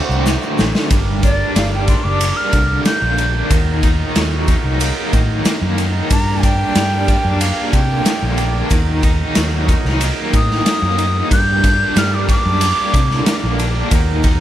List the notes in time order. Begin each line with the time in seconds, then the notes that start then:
Already playing: D3 A3 C4 F#4 C5 D5 F#5
0.09 C2, shaker
0.26 snare, shaker
0.42 shaker
0.58 A1, snare, shaker
0.75 snare, shaker
0.90 G1 G2 G3 D4 A#4 D5, kick, ride, shaker
1.23 D4 D5, kick, ride, shaker
1.56 G1 G3 F5, snare, ride, shaker
1.74 G5
1.88 D4 C6, kick, ride, shaker
2.04 F#1 D6
2.21 A#3, ride, shaker
2.37 F6
2.53 C2 D3, kick, ride, shaker
2.85 A#3 G6, snare, ride, shaker
3.02 A#1
3.18 D4, ride, shaker
3.50 D#2 D#3 F#3 D#4 D#5, kick, ride, shaker
3.83 D#4, kick, ride, shaker
4.16 D#2 F#3, snare, ride, shaker
4.48 D#4, kick, ride, shaker
4.64 C2
4.80 A#3, ride, shaker
5.13 A2 D#3, kick, ride, shaker
5.45 A#3, snare, ride, shaker
5.62 F#2
5.78 D#4, ride, shaker
6.10 G2 D4 G4 D5 A#5, kick, ride, shaker
6.43 D4 G5, kick, ride, shaker
6.75 G2 G3, snare, ride, shaker
7.08 D4, kick, ride, shaker
7.25 F#2
7.40 A#3 F5, ride, shaker
7.72 C3 D3 G5, kick, ride, shaker
8.05 A#3, snare, ride, shaker
8.22 A#1
8.37 D4, ride, shaker
8.70 D#2 D#3 F#3 D#4 D#5, kick, ride, shaker
9.03 D#4, kick, ride, shaker
9.35 D#2 F#3, snare, ride, shaker
9.68 D#4, kick, ride, shaker
9.85 C2, snare
10.00 A#3, ride, shaker
10.33 A2 D#3 D#6, kick, ride, shaker
10.51 snare
10.66 A#3, snare, ride, shaker
10.82 F#2
10.98 D#4, ride, shaker
11.30 G2 D4 G4 D5 G6, kick, ride, shaker
11.63 D4, kick, ride, shaker
11.95 G2 G3 F6, snare, ride, shaker
12.14 D6
12.29 D4 D6, kick, ride, shaker
12.46 F#2
12.61 A#3, ride, shaker
12.94 C3 D3, kick, ride, shaker
13.11 snare
13.26 A#3, snare, ride, shaker
13.43 A#1
13.59 D4, ride, shaker
13.91 D#2 D#3 F#3 D#4 D#5, kick, ride, shaker
14.23 D#4, kick, ride, shaker